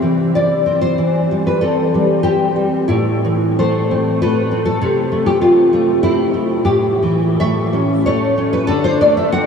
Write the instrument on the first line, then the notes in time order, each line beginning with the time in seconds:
nylon-string guitar
Already playing: C3 C4 E5
0.02 E3
0.35 E4 D5
0.66 C4
0.81 C5
0.98 E3
1.31 G3
1.47 B4
1.61 C4 A4
1.94 G3
2.23 C4 G4
2.56 G3
2.88 A2 E4
3.25 E3
3.59 A3 C5
3.91 C4
4.22 A3 B4
4.51 C4
4.65 A4
4.81 C3
5.12 A3
5.26 G4
5.41 C4 F4
5.73 A3
6.03 C4 E4
6.34 A3
6.65 A2 G4
7.02 E3
7.40 A3 E5
7.73 C#4
8.06 A3 C#5
8.37 C#4
8.53 B4
8.67 D3 A4
8.84 C5
9.01 A3 D5
9.17 E5
9.32 C4 F#5